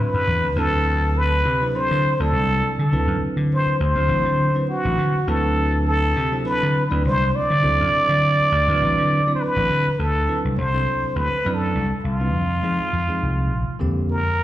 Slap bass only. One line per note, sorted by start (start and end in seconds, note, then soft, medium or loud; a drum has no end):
0.00 0.12 A2 medium
0.14 0.26 F#2 medium
0.27 0.42 E2 medium
0.42 0.55 D2 medium
0.56 1.41 D2 medium
1.45 1.72 C3 medium
1.91 2.03 D3 medium
2.04 muted slap bass stroke soft
2.20 2.32 D2 medium
2.33 2.60 C2 medium
2.79 2.94 D3 medium
2.92 3.07 D2 medium
3.07 3.20 F#2 medium
3.21 muted slap bass stroke soft
3.37 3.64 D3 medium
3.66 muted slap bass stroke soft
3.80 3.95 D2 medium
3.95 4.08 D2 medium
4.09 4.24 A1 medium
4.25 4.53 D3 medium
4.85 4.97 A1 medium
4.98 5.13 D3 loud
5.15 muted slap bass stroke soft
5.27 6.12 D2 medium
6.16 6.43 C3 medium
6.63 6.75 D3 medium
6.76 muted slap bass stroke soft
6.91 7.04 D2 medium
7.05 7.32 C2 medium
7.50 7.65 D3 medium
7.63 7.78 D2 medium
7.81 7.92 F#2 medium
7.93 muted slap bass stroke soft
8.09 8.36 D3 medium
8.39 muted slap bass stroke soft
8.52 8.67 D2 medium
8.68 8.80 D2 medium
8.81 8.96 A1 medium
8.98 9.24 D3 medium
9.56 9.68 A1 medium
9.70 9.85 D3 medium
9.87 muted slap bass stroke soft
9.99 10.26 D2 medium
10.45 10.57 C2 medium
10.58 10.85 C2 medium
11.03 muted slap bass stroke soft
11.16 11.31 D2 loud
11.46 11.73 F#2 medium
11.75 11.90 C2 medium
11.90 muted slap bass stroke soft
12.04 12.34 C2 medium
12.34 12.61 F2 medium
12.63 12.78 F3 medium
12.79 muted slap bass stroke soft
12.93 13.08 F2 medium
13.23 13.51 C2 medium
13.51 13.66 A#1 medium
13.68 muted slap bass stroke soft
13.81 14.44 F2 medium